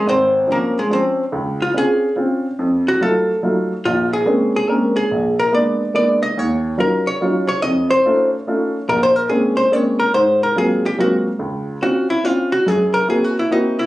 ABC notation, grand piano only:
X:1
M:3/4
L:1/8
Q:"Swing" 1/4=143
K:Db
V:1 name="Grand piano"
A,,,2 [F,CD] z [F,CD] z | D,,2 [CDF] z [CDF] z | F,,2 [G,=A,EF] z [G,A,EF] z | B,,,2 [A,B,CD] z [A,B,CD] z |
B,,,2 [A,B,_C=D] z [A,B,CD] z | E,,2 [G,DEF] z [G,DEF] z | F,,2 [=A,DEF] z [A,DEF] z | B,,,2 [A,B,CD] z [A,B,CD] z |
A,,2 [G,A,B,CF] z [G,A,B,CF] z | D,,2 [CDF] z [CDF] z | G,,2 [B,C_FG] z [B,CFG] z |]